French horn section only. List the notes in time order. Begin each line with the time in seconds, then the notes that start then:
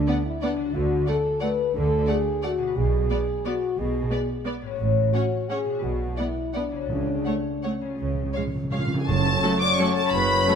Already playing: D4
0.25 E4
0.42 D4
0.75 F#4
1.09 A4
1.42 B4
1.75 A4
2.10 G#4
2.45 F#4
2.77 G#4
3.46 F#4
3.79 G#4
5.13 F#4
5.49 G#4
5.84 F#4
6.17 E4
6.54 D4
6.90 D4
7.64 C#4
9.45 C#4 F#4
9.80 C#4 F#4
10.48 C#4 F#4